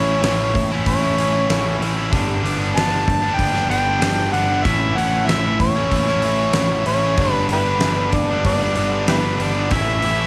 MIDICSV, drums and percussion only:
0, 0, Header, 1, 2, 480
1, 0, Start_track
1, 0, Tempo, 632244
1, 1613, Time_signature, 4, 2, 24, 8
1, 7796, End_track
2, 0, Start_track
2, 0, Title_t, "Drums"
2, 179, Note_on_c, 9, 46, 66
2, 181, Note_on_c, 9, 38, 102
2, 255, Note_off_c, 9, 46, 0
2, 257, Note_off_c, 9, 38, 0
2, 418, Note_on_c, 9, 36, 84
2, 426, Note_on_c, 9, 46, 56
2, 494, Note_off_c, 9, 36, 0
2, 502, Note_off_c, 9, 46, 0
2, 655, Note_on_c, 9, 46, 73
2, 656, Note_on_c, 9, 36, 83
2, 731, Note_off_c, 9, 46, 0
2, 732, Note_off_c, 9, 36, 0
2, 899, Note_on_c, 9, 46, 56
2, 975, Note_off_c, 9, 46, 0
2, 1138, Note_on_c, 9, 46, 76
2, 1141, Note_on_c, 9, 38, 104
2, 1214, Note_off_c, 9, 46, 0
2, 1216, Note_off_c, 9, 38, 0
2, 1384, Note_on_c, 9, 46, 59
2, 1460, Note_off_c, 9, 46, 0
2, 1615, Note_on_c, 9, 36, 109
2, 1617, Note_on_c, 9, 46, 75
2, 1691, Note_off_c, 9, 36, 0
2, 1692, Note_off_c, 9, 46, 0
2, 1865, Note_on_c, 9, 46, 56
2, 1941, Note_off_c, 9, 46, 0
2, 2105, Note_on_c, 9, 46, 73
2, 2107, Note_on_c, 9, 38, 98
2, 2181, Note_off_c, 9, 46, 0
2, 2183, Note_off_c, 9, 38, 0
2, 2337, Note_on_c, 9, 36, 82
2, 2349, Note_on_c, 9, 46, 63
2, 2413, Note_off_c, 9, 36, 0
2, 2425, Note_off_c, 9, 46, 0
2, 2573, Note_on_c, 9, 36, 83
2, 2577, Note_on_c, 9, 46, 73
2, 2649, Note_off_c, 9, 36, 0
2, 2653, Note_off_c, 9, 46, 0
2, 2698, Note_on_c, 9, 38, 33
2, 2774, Note_off_c, 9, 38, 0
2, 2819, Note_on_c, 9, 46, 51
2, 2895, Note_off_c, 9, 46, 0
2, 3051, Note_on_c, 9, 46, 77
2, 3054, Note_on_c, 9, 38, 107
2, 3127, Note_off_c, 9, 46, 0
2, 3130, Note_off_c, 9, 38, 0
2, 3294, Note_on_c, 9, 46, 52
2, 3370, Note_off_c, 9, 46, 0
2, 3531, Note_on_c, 9, 36, 107
2, 3533, Note_on_c, 9, 46, 74
2, 3607, Note_off_c, 9, 36, 0
2, 3609, Note_off_c, 9, 46, 0
2, 3782, Note_on_c, 9, 46, 51
2, 3857, Note_off_c, 9, 46, 0
2, 4016, Note_on_c, 9, 46, 66
2, 4018, Note_on_c, 9, 38, 96
2, 4092, Note_off_c, 9, 46, 0
2, 4094, Note_off_c, 9, 38, 0
2, 4251, Note_on_c, 9, 36, 81
2, 4254, Note_on_c, 9, 46, 59
2, 4327, Note_off_c, 9, 36, 0
2, 4330, Note_off_c, 9, 46, 0
2, 4491, Note_on_c, 9, 36, 81
2, 4494, Note_on_c, 9, 46, 71
2, 4567, Note_off_c, 9, 36, 0
2, 4570, Note_off_c, 9, 46, 0
2, 4614, Note_on_c, 9, 38, 34
2, 4690, Note_off_c, 9, 38, 0
2, 4724, Note_on_c, 9, 46, 56
2, 4800, Note_off_c, 9, 46, 0
2, 4959, Note_on_c, 9, 46, 69
2, 4962, Note_on_c, 9, 38, 106
2, 5035, Note_off_c, 9, 46, 0
2, 5038, Note_off_c, 9, 38, 0
2, 5207, Note_on_c, 9, 46, 59
2, 5283, Note_off_c, 9, 46, 0
2, 5447, Note_on_c, 9, 46, 74
2, 5449, Note_on_c, 9, 36, 108
2, 5523, Note_off_c, 9, 46, 0
2, 5525, Note_off_c, 9, 36, 0
2, 5686, Note_on_c, 9, 46, 57
2, 5762, Note_off_c, 9, 46, 0
2, 5926, Note_on_c, 9, 46, 76
2, 5928, Note_on_c, 9, 38, 100
2, 6001, Note_off_c, 9, 46, 0
2, 6004, Note_off_c, 9, 38, 0
2, 6168, Note_on_c, 9, 46, 60
2, 6171, Note_on_c, 9, 36, 84
2, 6244, Note_off_c, 9, 46, 0
2, 6247, Note_off_c, 9, 36, 0
2, 6413, Note_on_c, 9, 46, 72
2, 6414, Note_on_c, 9, 36, 83
2, 6488, Note_off_c, 9, 46, 0
2, 6490, Note_off_c, 9, 36, 0
2, 6647, Note_on_c, 9, 46, 56
2, 6723, Note_off_c, 9, 46, 0
2, 6892, Note_on_c, 9, 46, 75
2, 6894, Note_on_c, 9, 38, 106
2, 6968, Note_off_c, 9, 46, 0
2, 6970, Note_off_c, 9, 38, 0
2, 7136, Note_on_c, 9, 46, 55
2, 7212, Note_off_c, 9, 46, 0
2, 7370, Note_on_c, 9, 46, 71
2, 7374, Note_on_c, 9, 36, 107
2, 7446, Note_off_c, 9, 46, 0
2, 7450, Note_off_c, 9, 36, 0
2, 7610, Note_on_c, 9, 46, 55
2, 7686, Note_off_c, 9, 46, 0
2, 7796, End_track
0, 0, End_of_file